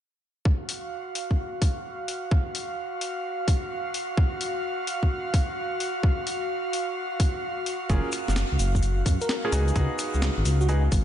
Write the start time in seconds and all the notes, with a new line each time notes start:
0.45 F#4 F5, kick
0.69 open hi-hat
1.15 open hi-hat
1.31 kick
1.62 kick, open hi-hat
2.08 open hi-hat
2.31 kick
2.55 open hi-hat
3.01 open hi-hat
3.48 kick, open hi-hat
3.94 open hi-hat
4.17 kick
4.41 open hi-hat
4.87 open hi-hat
5.03 kick
5.34 kick, open hi-hat
5.80 open hi-hat
6.03 kick
6.27 open hi-hat
6.73 open hi-hat
7.20 kick, open hi-hat
7.66 open hi-hat
7.89 F#1 A#3 C#4 F4 G#4, kick, closed hi-hat, cabasa
8.12 finger snap, open hi-hat, cabasa
8.28 F#1, snare, cabasa
8.36 finger snap, snare, closed hi-hat, cabasa
8.52 C#2
8.59 F#1, open hi-hat, cabasa
8.75 kick, cabasa
8.83 closed hi-hat, cabasa
9.06 F#2, kick, open hi-hat, cabasa
9.21 A#4, closed hi-hat, cabasa
9.29 snare, closed hi-hat, cabasa
9.45 A#3 C#4 F4 G#4
9.52 C#2 B3 D#4 F#4 G#4, open hi-hat, cabasa
9.68 closed hi-hat, cabasa
9.76 C#2 B3 D#4 F#4 G#4, kick, closed hi-hat, cabasa
9.99 finger snap, open hi-hat, cabasa
10.14 C#2, cabasa
10.22 finger snap, snare, closed hi-hat, cabasa
10.38 G#1
10.45 C#2, open hi-hat, cabasa
10.61 F#4, cabasa
10.69 B3 D#4 F#4 G#4, closed hi-hat, cabasa
10.92 G#1, kick, open hi-hat, cabasa